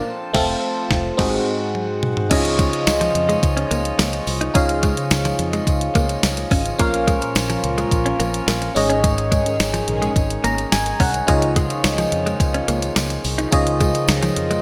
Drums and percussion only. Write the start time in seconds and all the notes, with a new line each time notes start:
0.35 kick, snare, crash
0.91 kick, snare
1.19 kick, snare, crash
1.75 high tom
2.03 mid tom
2.17 floor tom
2.31 kick, closed hi-hat, crash, tambourine
2.45 closed hi-hat
2.59 kick, closed hi-hat, tambourine
2.73 closed hi-hat
2.87 snare, closed hi-hat, tambourine
3.01 closed hi-hat, tambourine
3.15 closed hi-hat
3.29 closed hi-hat, tambourine
3.43 kick, closed hi-hat, tambourine
3.57 closed hi-hat
3.71 closed hi-hat, tambourine
3.85 closed hi-hat
3.99 snare, closed hi-hat, tambourine
4.13 closed hi-hat
4.27 open hi-hat, tambourine
4.41 closed hi-hat
4.55 kick, closed hi-hat, tambourine
4.69 closed hi-hat
4.83 kick, closed hi-hat, tambourine
4.97 closed hi-hat, tambourine
5.11 snare, closed hi-hat, tambourine
5.25 closed hi-hat, tambourine
5.39 closed hi-hat
5.53 closed hi-hat, tambourine
5.67 kick, closed hi-hat, tambourine
5.81 closed hi-hat
5.95 kick, closed hi-hat, tambourine
6.09 closed hi-hat, tambourine
6.23 snare, closed hi-hat, tambourine
6.37 closed hi-hat
6.51 kick, open hi-hat, tambourine
6.65 closed hi-hat, tambourine
6.79 kick, closed hi-hat, tambourine
6.94 closed hi-hat
7.07 kick, closed hi-hat, tambourine
7.21 closed hi-hat, tambourine
7.35 snare, closed hi-hat, tambourine
7.50 closed hi-hat, tambourine
7.64 closed hi-hat
7.78 closed hi-hat, tambourine
7.91 kick, closed hi-hat, tambourine
8.06 closed hi-hat
8.20 closed hi-hat, tambourine
8.33 closed hi-hat, tambourine
8.48 snare, closed hi-hat, tambourine
8.62 closed hi-hat
8.76 open hi-hat, tambourine
8.90 closed hi-hat
9.04 kick, closed hi-hat, tambourine
9.18 closed hi-hat
9.32 kick, closed hi-hat, tambourine
9.46 closed hi-hat, tambourine
9.60 snare, closed hi-hat, tambourine
9.74 closed hi-hat, tambourine
9.88 closed hi-hat
10.02 closed hi-hat, tambourine
10.16 kick, closed hi-hat, tambourine
10.30 closed hi-hat
10.44 closed hi-hat, tambourine
10.58 closed hi-hat, tambourine
10.72 snare, closed hi-hat, tambourine
10.86 closed hi-hat
11.00 kick, open hi-hat, tambourine
11.14 closed hi-hat, tambourine
11.28 kick, closed hi-hat, tambourine
11.42 closed hi-hat
11.56 kick, closed hi-hat, tambourine
11.70 closed hi-hat, tambourine
11.84 snare, closed hi-hat, tambourine
11.98 closed hi-hat, tambourine
12.12 closed hi-hat
12.26 closed hi-hat, tambourine
12.40 kick, closed hi-hat, tambourine
12.54 closed hi-hat
12.68 closed hi-hat, tambourine
12.82 closed hi-hat, tambourine
12.96 snare, closed hi-hat, tambourine
13.10 closed hi-hat
13.24 open hi-hat, tambourine
13.38 closed hi-hat, tambourine
13.52 kick, closed hi-hat, tambourine
13.67 closed hi-hat
13.80 kick, closed hi-hat, tambourine
13.94 closed hi-hat, tambourine
14.08 snare, closed hi-hat, tambourine
14.22 closed hi-hat, tambourine
14.36 closed hi-hat
14.50 closed hi-hat, tambourine